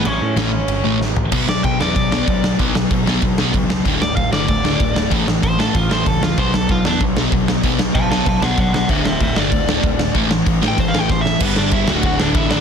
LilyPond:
<<
  \new Staff \with { instrumentName = "Overdriven electric guitar" } { \time 4/4 \key b \minor \tempo 4 = 191 <cis' cis''>2. r4 | r8 d''8 g''8 d''8 d''2 | r1 | r8 d''8 f''8 d''8 d''2 |
r4 c''8 a'8 f'8 c''8 a'8 f'8 | c''8 a'8 f'8 d'8 r2 | r4 <f'' a''>8 <f'' a''>8 <f'' a''>8 <d'' fis''>8 <d'' fis''>8 <d'' fis''>8 | <c'' e''>8 <c'' e''>8 <c'' e''>8 d''2~ d''8 |
r4 \tuplet 3/2 { r4 g''8 c''8 f''8 g''8 c''8 e''4 } | <b b'>8 <d' d''>8 <e' e''>8 <fis' fis''>8 <fis' fis''>8 <d' d''>8 <e' e''>8 <d' d''>8 | }
  \new Staff \with { instrumentName = "Distorted electric guitar" } { \clef bass \time 4/4 \key b \minor r4 <a, e a>8 r4 <a, e a>8 r4 | <b, fis b>8 <b, fis>8 <b, fis>8 <b, fis b>8 <b, fis>8 <b, fis b>8 <b, fis>8 <b, fis>8 | <b, fis b>8 <b, fis>8 <b, fis>8 <b, fis b>8 <b, fis>8 <b, fis b>8 <b, fis>8 <b, fis>8 | <d, a, d>8 <d, a,>8 <d, a,>8 <d, a, d>8 <d, a,>8 <d, a, d>8 <d, a,>8 <d, a,>8 |
<a, e a>8 <a, e>8 <a, e>8 <a, e a>8 <a, e>8 <a, e a>8 <a, e>8 <a, e>8 | <b, fis b>8 <b, fis>8 <b, fis>8 <b, fis b>8 <b, fis>8 <b, fis b>8 <b, fis>8 <b, fis>8 | <b, fis b>8 <b, fis>8 <b, fis>8 <b, fis b>8 <b, fis>8 <b, fis b>8 <b, fis>8 <b, fis>8 | <d, a, d>8 <d, a,>8 <d, a,>8 <d, a, d>8 <d, a,>8 <d, a, d>8 <d, a,>8 <d, a,>8 |
<a, e a>8 <a, e>8 <a, e>8 <a, e a>8 <a, e>8 <a, e a>8 <a, e>8 <a, e>8 | <g, d g>4. <d, a, d>2 <d, a, d>8 | }
  \new Staff \with { instrumentName = "Distorted electric guitar" } { \clef bass \time 4/4 \key b \minor r4 <a, e a>8 r4 <a, e a>8 r4 | <b, fis b>8 <b, fis>8 <b, fis>8 <b, fis b>8 <b, fis>8 <b, fis b>8 <b, fis>8 <b, fis>8 | <b, fis b>8 <b, fis>8 <b, fis>8 <b, fis b>8 <b, fis>8 <b, fis b>8 <b, fis>8 <b, fis>8 | <d, a, d>8 <d, a,>8 <d, a,>8 <d, a, d>8 <d, a,>8 <d, a, d>8 <d, a,>8 <d, a,>8 |
<a, e a>8 <a, e>8 <a, e>8 <a, e a>8 <a, e>8 <a, e a>8 <a, e>8 <a, e>8 | <b, fis b>8 <b, fis>8 <b, fis>8 <b, fis b>8 <b, fis>8 <b, fis b>8 <b, fis>8 <b, fis>8 | <b, fis b>8 <b, fis>8 <b, fis>8 <b, fis b>8 <b, fis>8 <b, fis b>8 <b, fis>8 <b, fis>8 | <d, a, d>8 <d, a,>8 <d, a,>8 <d, a, d>8 <d, a,>8 <d, a, d>8 <d, a,>8 <d, a,>8 |
<a, e a>8 <a, e>8 <a, e>8 <a, e a>8 <a, e>8 <a, e a>8 <a, e>8 <a, e>8 | <g, d g>4. <d, a, d>2~ <d, a, d>8 | }
  \new Staff \with { instrumentName = "Picked electric bass" } { \clef bass \time 4/4 \key b \minor a,,8 a,8 a,,4 g,,8 a,,8 a,,8 a,,8 | b,,8 b,,8 b,,8 e,8 b,,4 b,,4 | b,,4 b,,4 b,,8 b,,8 cis,4 | d,,8 d,,8 d,,8 g,,8 d,,4 d,,4 |
a,,4 a,,4 a,,8 a,,8 cis,4 | b,,8 b,,8 b,,8 e,8 b,,4 b,,4 | b,,4 b,,4 b,,8 b,,8 b,,4 | d,,8 d,,8 d,,8 g,,8 d,,4 d,,4 |
a,,4 a,,4 a,,8 a,,8 a,,4 | g,,8 g,,8 g,,8 d,,8 d,,8 d,,8 a,,4 | }
  \new DrumStaff \with { instrumentName = "Drums" } \drummode { \time 4/4 cymr4 <cymr sn>4 cymr4 sn8 tomfh8 | <cymc bd>8 sn8 <cymc bd>8 sn8 <cymc bd>8 sn8 <cymc bd>8 sn8 | <cymc bd>8 sn8 <cymc bd>8 sn8 <cymc bd>8 sn8 <cymc bd>8 sn8 | <cymc bd>8 sn8 <cymc bd>8 sn8 <cymc bd>8 sn8 <cymc bd>8 sn8 |
<cymc bd>8 sn8 <cymc bd>8 sn8 <cymc bd>8 sn8 <cymc bd>8 sn8 | <cymc bd>8 sn8 <cymc bd>8 sn8 <cymc bd>8 sn8 <cymc bd>8 sn8 | <cymc bd>8 sn8 <cymc bd>8 sn8 <cymc bd>8 sn8 <cymc bd>8 sn8 | <cymc bd>8 sn8 <cymc bd>8 sn8 <cymc bd>8 sn8 <cymc bd>8 sn8 |
<cymc bd>8 sn8 <cymc bd>8 sn8 <cymc bd>8 sn8 <bd sn>8 sn8 | <cymc bd>8 sn8 <bd cymr>8 sn8 <bd cymr>8 sn8 <bd cymr>8 sn8 | }
>>